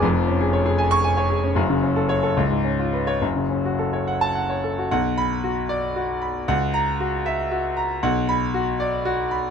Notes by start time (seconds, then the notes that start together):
0.02 F1 F2
0.16 F3
0.28 C#4
0.40 G#4
0.53 C#5
0.66 G#4
0.78 G#5
0.91 C#6
1.04 G#5
1.17 C#5
1.30 G#4
1.43 C#4
1.55 F#1 F#2
1.70 C#3
1.83 C#4
1.96 A4
2.09 C#5
2.23 A4
2.37 C#2
2.50 G#2
2.65 C#4
2.79 F4
2.93 B4
3.07 C#5
3.21 F#1 F#2
3.36 C#3
3.51 C#4
3.65 F#4
3.79 A4
3.93 C#5
4.07 F#5
4.21 A5
4.35 F#5
4.50 C#5
4.64 A4
4.78 F#4
4.91 B1 F#5
5.18 B5
5.44 F#4
5.69 D5
5.96 F#4
6.22 B5
6.48 C#2 F#5
6.74 A#5
7.00 F#4
7.26 E5
7.51 F#4
7.77 A#5
8.03 B1 F#5
8.29 B5
8.54 F#4
8.80 D5
9.05 F#4
9.31 B5